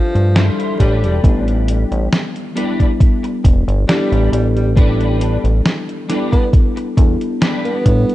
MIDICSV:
0, 0, Header, 1, 7, 480
1, 0, Start_track
1, 0, Tempo, 882353
1, 675, Time_signature, 4, 2, 24, 8
1, 4433, End_track
2, 0, Start_track
2, 0, Title_t, "Clean electric guitar"
2, 0, Program_c, 0, 27
2, 191, Note_on_c, 0, 64, 100
2, 195, Note_on_c, 0, 65, 78
2, 197, Note_on_c, 0, 72, 106
2, 430, Note_off_c, 0, 64, 0
2, 432, Note_off_c, 0, 65, 0
2, 432, Note_on_c, 0, 62, 97
2, 434, Note_on_c, 0, 67, 89
2, 436, Note_off_c, 0, 72, 0
2, 438, Note_on_c, 0, 71, 83
2, 1205, Note_off_c, 0, 62, 0
2, 1206, Note_off_c, 0, 67, 0
2, 1207, Note_off_c, 0, 71, 0
2, 1390, Note_on_c, 0, 62, 86
2, 1393, Note_on_c, 0, 67, 86
2, 1395, Note_on_c, 0, 71, 97
2, 1576, Note_off_c, 0, 62, 0
2, 1578, Note_off_c, 0, 67, 0
2, 1579, Note_off_c, 0, 71, 0
2, 2110, Note_on_c, 0, 62, 92
2, 2115, Note_on_c, 0, 67, 81
2, 2115, Note_on_c, 0, 71, 106
2, 2353, Note_off_c, 0, 62, 0
2, 2354, Note_off_c, 0, 67, 0
2, 2355, Note_off_c, 0, 71, 0
2, 2590, Note_on_c, 0, 62, 123
2, 2594, Note_on_c, 0, 67, 94
2, 2595, Note_on_c, 0, 71, 127
2, 2960, Note_off_c, 0, 62, 0
2, 2961, Note_off_c, 0, 67, 0
2, 2963, Note_off_c, 0, 71, 0
2, 3311, Note_on_c, 0, 62, 85
2, 3314, Note_on_c, 0, 67, 79
2, 3316, Note_on_c, 0, 71, 97
2, 3497, Note_off_c, 0, 62, 0
2, 3498, Note_off_c, 0, 67, 0
2, 3499, Note_off_c, 0, 71, 0
2, 4030, Note_on_c, 0, 62, 90
2, 4034, Note_on_c, 0, 67, 79
2, 4035, Note_on_c, 0, 71, 104
2, 4273, Note_off_c, 0, 62, 0
2, 4274, Note_off_c, 0, 67, 0
2, 4275, Note_off_c, 0, 71, 0
2, 4433, End_track
3, 0, Start_track
3, 0, Title_t, "FM electric piano"
3, 0, Program_c, 1, 5
3, 0, Control_c, 1, 64, 127
3, 0, Note_on_c, 1, 53, 81
3, 0, Note_on_c, 1, 60, 71
3, 0, Note_on_c, 1, 62, 79
3, 0, Note_on_c, 1, 69, 89
3, 0, Note_on_c, 1, 76, 76
3, 163, Note_off_c, 1, 53, 0
3, 165, Note_off_c, 1, 60, 0
3, 166, Note_off_c, 1, 62, 0
3, 169, Note_off_c, 1, 76, 0
3, 171, Note_off_c, 1, 69, 0
3, 193, Note_on_c, 1, 55, 90
3, 197, Note_on_c, 1, 62, 86
3, 198, Note_on_c, 1, 76, 81
3, 200, Note_on_c, 1, 69, 101
3, 443, Control_c, 1, 64, 0
3, 546, Control_c, 1, 64, 127
3, 647, Note_off_c, 1, 55, 0
3, 649, Note_off_c, 1, 62, 0
3, 649, Note_off_c, 1, 76, 0
3, 651, Note_off_c, 1, 69, 0
3, 666, Note_on_c, 1, 55, 80
3, 669, Note_on_c, 1, 59, 75
3, 673, Note_on_c, 1, 62, 73
3, 677, Note_on_c, 1, 64, 71
3, 682, Note_on_c, 1, 69, 84
3, 1363, Note_off_c, 1, 55, 0
3, 1365, Note_off_c, 1, 59, 0
3, 1367, Note_off_c, 1, 62, 0
3, 1369, Note_off_c, 1, 64, 0
3, 1371, Note_off_c, 1, 69, 0
3, 1387, Note_on_c, 1, 55, 83
3, 1389, Note_on_c, 1, 59, 77
3, 1394, Note_on_c, 1, 62, 76
3, 1399, Note_on_c, 1, 64, 75
3, 1402, Note_on_c, 1, 69, 86
3, 2084, Note_off_c, 1, 55, 0
3, 2085, Note_off_c, 1, 59, 0
3, 2087, Note_off_c, 1, 62, 0
3, 2090, Note_off_c, 1, 64, 0
3, 2091, Note_off_c, 1, 69, 0
3, 2110, Note_on_c, 1, 55, 91
3, 2112, Note_on_c, 1, 59, 83
3, 2115, Note_on_c, 1, 62, 84
3, 2116, Note_on_c, 1, 64, 83
3, 2117, Note_on_c, 1, 69, 95
3, 2566, Note_off_c, 1, 55, 0
3, 2566, Note_off_c, 1, 59, 0
3, 2568, Note_off_c, 1, 62, 0
3, 2568, Note_off_c, 1, 64, 0
3, 2569, Note_off_c, 1, 69, 0
3, 2587, Note_on_c, 1, 55, 79
3, 2591, Note_on_c, 1, 59, 72
3, 2596, Note_on_c, 1, 62, 70
3, 2599, Note_on_c, 1, 64, 72
3, 2604, Note_on_c, 1, 69, 87
3, 3284, Note_off_c, 1, 55, 0
3, 3286, Note_off_c, 1, 59, 0
3, 3288, Note_off_c, 1, 62, 0
3, 3290, Note_off_c, 1, 64, 0
3, 3292, Note_off_c, 1, 69, 0
3, 3311, Note_on_c, 1, 55, 81
3, 3313, Note_on_c, 1, 59, 76
3, 3315, Note_on_c, 1, 62, 73
3, 3317, Note_on_c, 1, 64, 74
3, 3318, Note_on_c, 1, 69, 89
3, 3770, Note_off_c, 1, 55, 0
3, 3771, Note_off_c, 1, 59, 0
3, 3772, Note_off_c, 1, 62, 0
3, 3774, Note_off_c, 1, 64, 0
3, 3774, Note_off_c, 1, 69, 0
3, 3791, Note_on_c, 1, 55, 75
3, 3792, Note_on_c, 1, 59, 69
3, 3795, Note_on_c, 1, 62, 67
3, 3797, Note_on_c, 1, 64, 71
3, 3798, Note_on_c, 1, 69, 85
3, 4246, Note_off_c, 1, 55, 0
3, 4246, Note_off_c, 1, 59, 0
3, 4248, Note_off_c, 1, 62, 0
3, 4249, Note_off_c, 1, 64, 0
3, 4249, Note_off_c, 1, 69, 0
3, 4271, Note_on_c, 1, 55, 83
3, 4272, Note_on_c, 1, 59, 72
3, 4274, Note_on_c, 1, 62, 75
3, 4276, Note_on_c, 1, 64, 74
3, 4278, Note_on_c, 1, 69, 90
3, 4341, Note_off_c, 1, 55, 0
3, 4341, Note_off_c, 1, 59, 0
3, 4342, Note_off_c, 1, 62, 0
3, 4343, Note_off_c, 1, 64, 0
3, 4344, Note_off_c, 1, 69, 0
3, 4433, End_track
4, 0, Start_track
4, 0, Title_t, "Tenor saxophone"
4, 0, Program_c, 2, 66
4, 0, Note_on_c, 2, 53, 92
4, 246, Note_off_c, 2, 53, 0
4, 436, Note_on_c, 2, 55, 90
4, 517, Note_off_c, 2, 55, 0
4, 565, Note_on_c, 2, 55, 79
4, 636, Note_off_c, 2, 55, 0
4, 2115, Note_on_c, 2, 55, 96
4, 2332, Note_off_c, 2, 55, 0
4, 2355, Note_on_c, 2, 55, 85
4, 2437, Note_off_c, 2, 55, 0
4, 2480, Note_on_c, 2, 55, 78
4, 2553, Note_off_c, 2, 55, 0
4, 3438, Note_on_c, 2, 59, 89
4, 3530, Note_off_c, 2, 59, 0
4, 4162, Note_on_c, 2, 59, 91
4, 4433, Note_off_c, 2, 59, 0
4, 4433, End_track
5, 0, Start_track
5, 0, Title_t, "Analog synth bass"
5, 0, Program_c, 3, 38
5, 82, Note_on_c, 3, 43, 87
5, 274, Note_off_c, 3, 43, 0
5, 434, Note_on_c, 3, 33, 103
5, 562, Note_on_c, 3, 28, 93
5, 570, Note_off_c, 3, 33, 0
5, 656, Note_off_c, 3, 28, 0
5, 673, Note_on_c, 3, 33, 97
5, 1008, Note_off_c, 3, 33, 0
5, 1042, Note_on_c, 3, 33, 98
5, 1135, Note_off_c, 3, 33, 0
5, 1873, Note_on_c, 3, 28, 88
5, 1980, Note_off_c, 3, 28, 0
5, 2001, Note_on_c, 3, 31, 97
5, 2095, Note_off_c, 3, 31, 0
5, 2241, Note_on_c, 3, 33, 96
5, 2335, Note_off_c, 3, 33, 0
5, 2352, Note_on_c, 3, 33, 94
5, 2927, Note_off_c, 3, 33, 0
5, 2960, Note_on_c, 3, 33, 96
5, 3055, Note_off_c, 3, 33, 0
5, 3794, Note_on_c, 3, 40, 85
5, 3901, Note_off_c, 3, 40, 0
5, 4274, Note_on_c, 3, 45, 88
5, 4381, Note_off_c, 3, 45, 0
5, 4433, End_track
6, 0, Start_track
6, 0, Title_t, "Muted clean electric guitar strokes"
6, 1758, Note_on_c, 9, 29, 116
6, 1813, Note_off_c, 9, 29, 0
6, 1871, Note_on_c, 9, 29, 35
6, 1925, Note_off_c, 9, 29, 0
6, 3678, Note_on_c, 9, 29, 120
6, 3733, Note_off_c, 9, 29, 0
6, 3791, Note_on_c, 9, 29, 34
6, 3845, Note_off_c, 9, 29, 0
6, 4433, End_track
7, 0, Start_track
7, 0, Title_t, "Drums"
7, 84, Note_on_c, 9, 42, 41
7, 139, Note_off_c, 9, 42, 0
7, 195, Note_on_c, 9, 38, 126
7, 195, Note_on_c, 9, 42, 73
7, 250, Note_off_c, 9, 38, 0
7, 250, Note_off_c, 9, 42, 0
7, 325, Note_on_c, 9, 42, 40
7, 379, Note_off_c, 9, 42, 0
7, 434, Note_on_c, 9, 36, 63
7, 436, Note_on_c, 9, 42, 92
7, 489, Note_off_c, 9, 36, 0
7, 491, Note_off_c, 9, 42, 0
7, 565, Note_on_c, 9, 42, 40
7, 619, Note_off_c, 9, 42, 0
7, 674, Note_on_c, 9, 36, 123
7, 677, Note_on_c, 9, 42, 70
7, 729, Note_off_c, 9, 36, 0
7, 732, Note_off_c, 9, 42, 0
7, 805, Note_on_c, 9, 42, 39
7, 859, Note_off_c, 9, 42, 0
7, 916, Note_on_c, 9, 42, 90
7, 970, Note_off_c, 9, 42, 0
7, 1044, Note_on_c, 9, 42, 42
7, 1098, Note_off_c, 9, 42, 0
7, 1156, Note_on_c, 9, 38, 126
7, 1156, Note_on_c, 9, 42, 70
7, 1211, Note_off_c, 9, 38, 0
7, 1211, Note_off_c, 9, 42, 0
7, 1283, Note_on_c, 9, 42, 37
7, 1338, Note_off_c, 9, 42, 0
7, 1397, Note_on_c, 9, 42, 103
7, 1451, Note_off_c, 9, 42, 0
7, 1522, Note_on_c, 9, 36, 65
7, 1524, Note_on_c, 9, 42, 41
7, 1577, Note_off_c, 9, 36, 0
7, 1578, Note_off_c, 9, 42, 0
7, 1634, Note_on_c, 9, 36, 127
7, 1637, Note_on_c, 9, 42, 66
7, 1689, Note_off_c, 9, 36, 0
7, 1691, Note_off_c, 9, 42, 0
7, 1763, Note_on_c, 9, 42, 43
7, 1817, Note_off_c, 9, 42, 0
7, 1874, Note_on_c, 9, 36, 103
7, 1876, Note_on_c, 9, 42, 95
7, 1929, Note_off_c, 9, 36, 0
7, 1931, Note_off_c, 9, 42, 0
7, 2005, Note_on_c, 9, 42, 42
7, 2059, Note_off_c, 9, 42, 0
7, 2116, Note_on_c, 9, 38, 127
7, 2116, Note_on_c, 9, 42, 72
7, 2171, Note_off_c, 9, 38, 0
7, 2171, Note_off_c, 9, 42, 0
7, 2244, Note_on_c, 9, 42, 38
7, 2299, Note_off_c, 9, 42, 0
7, 2357, Note_on_c, 9, 42, 92
7, 2411, Note_off_c, 9, 42, 0
7, 2484, Note_on_c, 9, 42, 41
7, 2538, Note_off_c, 9, 42, 0
7, 2594, Note_on_c, 9, 36, 127
7, 2596, Note_on_c, 9, 42, 66
7, 2648, Note_off_c, 9, 36, 0
7, 2651, Note_off_c, 9, 42, 0
7, 2723, Note_on_c, 9, 42, 38
7, 2778, Note_off_c, 9, 42, 0
7, 2835, Note_on_c, 9, 42, 89
7, 2890, Note_off_c, 9, 42, 0
7, 2964, Note_on_c, 9, 42, 42
7, 3018, Note_off_c, 9, 42, 0
7, 3077, Note_on_c, 9, 38, 120
7, 3077, Note_on_c, 9, 42, 61
7, 3131, Note_off_c, 9, 38, 0
7, 3131, Note_off_c, 9, 42, 0
7, 3205, Note_on_c, 9, 42, 38
7, 3259, Note_off_c, 9, 42, 0
7, 3316, Note_on_c, 9, 38, 39
7, 3316, Note_on_c, 9, 42, 96
7, 3371, Note_off_c, 9, 38, 0
7, 3371, Note_off_c, 9, 42, 0
7, 3442, Note_on_c, 9, 36, 65
7, 3444, Note_on_c, 9, 42, 40
7, 3496, Note_off_c, 9, 36, 0
7, 3499, Note_off_c, 9, 42, 0
7, 3554, Note_on_c, 9, 36, 122
7, 3556, Note_on_c, 9, 42, 63
7, 3608, Note_off_c, 9, 36, 0
7, 3610, Note_off_c, 9, 42, 0
7, 3684, Note_on_c, 9, 42, 43
7, 3738, Note_off_c, 9, 42, 0
7, 3794, Note_on_c, 9, 36, 108
7, 3796, Note_on_c, 9, 42, 90
7, 3848, Note_off_c, 9, 36, 0
7, 3850, Note_off_c, 9, 42, 0
7, 3923, Note_on_c, 9, 42, 41
7, 3978, Note_off_c, 9, 42, 0
7, 4035, Note_on_c, 9, 38, 126
7, 4035, Note_on_c, 9, 42, 70
7, 4089, Note_off_c, 9, 38, 0
7, 4089, Note_off_c, 9, 42, 0
7, 4163, Note_on_c, 9, 42, 38
7, 4217, Note_off_c, 9, 42, 0
7, 4274, Note_on_c, 9, 36, 65
7, 4274, Note_on_c, 9, 42, 88
7, 4329, Note_off_c, 9, 36, 0
7, 4329, Note_off_c, 9, 42, 0
7, 4403, Note_on_c, 9, 42, 37
7, 4433, Note_off_c, 9, 42, 0
7, 4433, End_track
0, 0, End_of_file